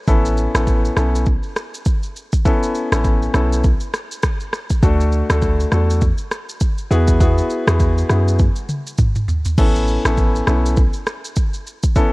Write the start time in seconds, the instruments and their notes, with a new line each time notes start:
0.08 808-style bass A1, grand piano B3 C#4 E4 A4, kick, shaker
0.25 shaker
0.37 shaker
0.54 808-style bass A1, grand piano B3 C#4 E4 A4, cross-stick, shaker
0.67 kick, shaker
0.85 shaker
0.97 808-style bass B1, grand piano B3 C#4 E4 A4, cross-stick, shaker
1.15 shaker
1.26 kick, shaker
1.43 shaker
1.56 cross-stick, shaker
1.74 shaker
1.85 kick, shaker
2.03 shaker
2.16 shaker
2.32 kick, shaker
2.45 grand piano B3 C#4 E4 A4, kick, shaker
2.63 shaker
2.75 shaker
2.92 808-style bass A1, grand piano B3 C#4 E4 A4, cross-stick, shaker
3.05 kick, shaker
3.23 shaker
3.34 808-style bass B1, grand piano B3 C#4 E4 A4, cross-stick, shaker
3.53 shaker
3.64 kick, shaker
3.80 shaker
3.94 cross-stick, shaker
4.12 shaker
4.23 kick, cross-stick, shaker
4.40 shaker
4.53 cross-stick, shaker
4.70 kick, shaker
4.83 808-style bass D2, grand piano A3 D4 F#4 A4, kick, shaker
5.00 shaker
5.12 shaker
5.30 808-style bass D2, grand piano A3 D4 F#4 A4, cross-stick, shaker
5.42 kick, shaker
5.60 shaker
5.72 808-style bass E2, grand piano A3 D4 F#4 A4, cross-stick, shaker
5.90 shaker
6.01 kick, shaker
6.18 shaker
6.32 cross-stick, shaker
6.49 shaker
6.60 kick, shaker
6.78 shaker
6.91 808-style bass E2, grand piano B3 E4 F#4 G#4, shaker
7.08 kick, shaker
7.20 grand piano B3 E4 F#4 G#4, kick, shaker
7.38 shaker
7.50 shaker
7.67 808-style bass E2, grand piano B3 E4 F#4 G#4, cross-stick, shaker
7.80 kick, shaker
7.98 shaker
8.09 808-style bass F#2, grand piano B3 E4 F#4 G#4, cross-stick, shaker
8.28 shaker
8.39 kick, high tom, shaker
8.56 shaker
8.69 mid tom, shaker
8.87 shaker
8.98 kick, mid tom, shaker
9.15 mid tom, shaker
9.28 floor tom, shaker
9.45 floor tom, shaker
9.58 808-style bass A1, grand piano B3 C#4 E4 A4, kick, crash, shaker
9.76 shaker
9.88 shaker
10.05 808-style bass A1, grand piano B3 C#4 E4 A4, cross-stick, shaker
10.17 kick, shaker
10.35 shaker
10.47 808-style bass B1, grand piano B3 C#4 E4 A4, cross-stick, shaker
10.66 shaker
10.76 kick, shaker
10.93 shaker
11.07 cross-stick, shaker
11.24 shaker
11.36 kick, shaker
11.53 shaker
11.66 shaker
11.83 kick, shaker
11.95 grand piano B3 C#4 E4 A4, kick, shaker